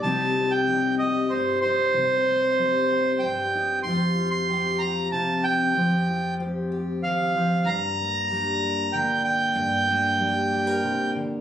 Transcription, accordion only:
\new Staff \with { instrumentName = "Accordion" } { \time 3/4 \key g \minor \tempo 4 = 94 a''8. g''8. ees''8 c''8 c''8~ | c''2 g''4 | c'''8. c'''8. bes''8 a''8 g''8~ | g''4 r4 f''4 |
bes''2 g''8 g''8~ | g''2~ g''8 r8 | }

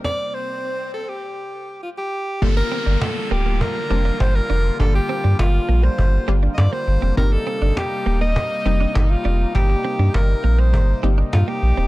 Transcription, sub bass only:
\new Staff \with { instrumentName = "Sub bass" } { \clef bass \time 4/4 \key g \minor \tempo 4 = 101 r1 | g,,8 r16 g,,16 r8 d,,8. r16 f,,8 g,,8 f,,8 | g,,8 r16 g,16 g,,8 bes,,8 g,,8 g,,8 g,16 r16 g,,16 f,,16 | g,,8 r16 g,,16 r8 ees,,8. r16 f,,8 g,,8 f,,8 |
g,,8 r16 g,16 g,,8 bes,,8 g,,8 g,,8 g,16 r16 bes,,16 ees,,16 | }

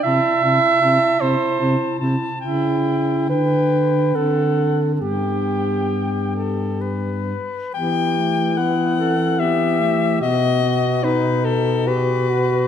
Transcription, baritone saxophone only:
\new Staff \with { instrumentName = "Baritone saxophone" } { \clef bass \time 3/4 \key g \major \tempo 4 = 72 c8 c8 c8 c8 c8 c8 | cis4 d4 d4 | g,2~ g,8 r8 | \key e \minor e2. |
b,2. | }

